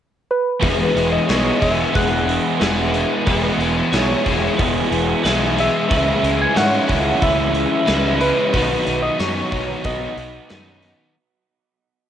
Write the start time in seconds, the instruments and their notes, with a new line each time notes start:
0.31 soft synth lead B4
0.60 fingered electric bass E1, overdriven electric guitar E2 B2 E3 G#3 B3 G#4, clean electric guitar B4, kick, open hi-hat
0.65 overdriven electric guitar E4
0.95 fingered electric bass E1, overdriven electric guitar G#3 B3 E4, open hi-hat
1.12 soft synth lead D#5
1.27 fingered electric bass B1, overdriven electric guitar E3 G#3 B3 E4 G#4, clean electric guitar C#5, snare, open hi-hat
1.60 fingered electric bass E1, overdriven electric guitar E3 G#3 B3 E4 G#4, soft synth lead E5, kick, open hi-hat
1.92 fingered electric bass E1, overdriven electric guitar E3 G#3 B3 G#4, clean electric guitar B4, soft synth lead F#5, kick, open hi-hat
2.27 overdriven electric guitar E3 G#3 B3 G#4, open hi-hat
2.59 fingered electric bass E1, overdriven electric guitar E3 G#3 B3 E4 G#4, clean electric guitar B4, snare, open hi-hat
2.93 overdriven electric guitar G#3 B3 E4, open hi-hat
3.26 fingered electric bass E1, overdriven electric guitar E2 B2 E3 G#3 B3 E4 G#4, clean electric guitar B4, kick, open hi-hat
3.58 fingered electric bass E1, overdriven electric guitar B3 E4, open hi-hat
3.63 overdriven electric guitar G#3
3.92 fingered electric bass B1, overdriven electric guitar E3 G#3 B3 G#4, clean electric guitar C#5, snare, open hi-hat
3.96 overdriven electric guitar E4
4.25 fingered electric bass E1, overdriven electric guitar E3 G#3 B3 E4 G#4, kick, open hi-hat
4.57 fingered electric bass E1, overdriven electric guitar E3 G#3 B3 G#4, clean electric guitar B4, kick, open hi-hat
4.90 fingered electric bass E1, overdriven electric guitar E3 G#3 B3 G#4, open hi-hat
5.22 fingered electric bass B1, overdriven electric guitar E3 G#3 B3 G#4, clean electric guitar B4, snare, open hi-hat
5.27 overdriven electric guitar E4
5.57 overdriven electric guitar G#3 B3 E4, soft synth lead E5, open hi-hat
5.88 fingered electric bass C#2, overdriven electric guitar C#3 E3 G#3 C#4 E4, clean electric guitar B4, kick, open hi-hat
6.21 fingered electric bass C#2, overdriven electric guitar G#3 C#4 E4, open hi-hat
6.42 soft synth lead G#5
6.54 fingered electric bass G#2, overdriven electric guitar C#3 E3 G#3 C#4 E4, clean electric guitar C#5, soft synth lead F#5, snare, open hi-hat
6.87 fingered electric bass C#2, overdriven electric guitar G#3 C#4 E4, kick, open hi-hat
7.20 fingered electric bass C#2, overdriven electric guitar E3 G#3 C#4 E4, clean electric guitar B4, soft synth lead E5, kick, open hi-hat
7.53 overdriven electric guitar G#3 C#4 E4, open hi-hat
7.86 fingered electric bass C#2, overdriven electric guitar C#3 E3 G#3 C#4 E4, clean electric guitar B4, snare, open hi-hat
8.20 overdriven electric guitar G#3 C#4 E4, soft synth lead B4, open hi-hat
8.52 fingered electric bass B1, overdriven electric guitar B2 D#3 F#3 B3 D#4 F#4, clean electric guitar B4, kick, open hi-hat
8.85 fingered electric bass B1, overdriven electric guitar F#3 B3 D#4, open hi-hat
9.03 soft synth lead D#5
9.18 fingered electric bass F#2, overdriven electric guitar D#3 F#3 B3 D#4 F#4, clean electric guitar C#5, soft synth lead C#5, snare, open hi-hat
9.51 fingered electric bass B1, overdriven electric guitar F#3 B3 D#4 F#4, kick, open hi-hat
9.83 fingered electric bass B1, overdriven electric guitar F#3 B3 D#4 F#4, clean electric guitar B4, soft synth lead D#5, kick, open hi-hat
10.16 fingered electric bass B1, overdriven electric guitar B3 D#4 F#4, open hi-hat
10.49 fingered electric bass F#2, overdriven electric guitar D#3 F#3 B3 D#4 F#4, clean electric guitar B4, snare, open hi-hat
10.82 overdriven electric guitar F#3 B3 D#4, open hi-hat